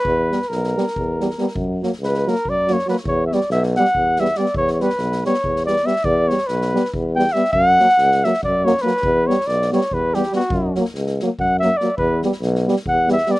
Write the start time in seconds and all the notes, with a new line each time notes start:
Already playing: B4
0.05 E2, kick
0.30 G3 B3, snare
0.42 snare
0.48 B1 A#4, snare
0.64 snare
0.76 G3 B3, snare
0.87 snare
0.96 E2, kick
1.20 G3 B3, snare
1.30 snare
1.38 G3 B3, snare
1.48 snare
1.55 F#2, kick
1.83 F#3 A#3, snare
1.93 snare
2.00 C#2, snare
2.04 B4
2.14 snare
2.25 F#3 A#3 A#4, snare
2.35 snare
2.45 F#2, kick
2.49 D5
2.68 F#3 A#3, snare
2.73 C#5
2.79 snare
2.87 F#3 A#3 B4, snare
2.97 snare
3.05 E2 C#5, kick
3.26 E5
3.32 G3 B3 D5, snare
3.41 snare
3.50 B1 E5, snare
3.63 snare
3.75 G3 B3 F#5, snare
3.85 snare
3.95 E2, kick
4.16 G3 B3 E5, snare
4.25 snare
4.35 G3 D5, snare
4.40 B3
4.46 snare
4.54 E2 C#5, kick
4.68 snare
4.72 C#5
4.80 G3 B3 B4, snare
4.90 snare
4.98 B1, snare
5.12 snare
5.25 G3 B3 C#5, snare
5.34 snare
5.44 E2, kick
5.56 snare
5.66 G3 B3 D5, snare
5.76 snare
5.84 G3 B3 E5, snare
5.96 snare
6.04 E2 D5, kick
6.28 G3 B3 C#5, snare
6.38 snare
6.47 B1 B4, snare
6.62 snare
6.74 G3 B3, snare
6.85 snare
6.94 E2, kick
7.15 G3 B3 G5, snare
7.28 snare
7.32 G3 B3 E5, snare
7.45 snare
7.52 F#2 F#5, kick
7.79 F#3 A#3, snare
7.89 snare
7.98 C#2, snare
8.12 snare
8.24 F#3 A#3 E5, snare
8.34 snare
8.43 F#2 D5, kick
8.65 F#3 A#3 C#5, snare
8.78 B4, snare
8.84 F#3 A#3, snare
8.97 snare
9.02 E2, kick
9.27 G3 B3 C#5, snare
9.41 snare
9.47 B1 D5, snare
9.62 snare
9.72 G3 B3 C#5, snare
9.81 snare
9.91 E2 B4, kick
10.14 G3 B3 G4, snare
10.23 snare
10.32 G3 B3 F#4, snare
10.40 snare
10.50 F#2, kick
10.75 F#3 A#3, snare
10.85 snare
10.95 C#2, snare
11.07 snare
11.20 F#3 A#3, snare
11.39 F#2 F#5, kick
11.59 F#3 A#3 E5, snare
11.77 D5, snare
11.81 F#3 A#3
11.97 E2 B4, kick
12.22 G3 B3, snare
12.33 snare
12.42 B1, snare
12.55 snare
12.67 G3 B3, snare
12.77 snare
12.86 E2 F#5, kick
13.08 G3 B3, snare
13.12 E5
13.18 snare
13.26 G3 B3, snare
13.31 D5, snare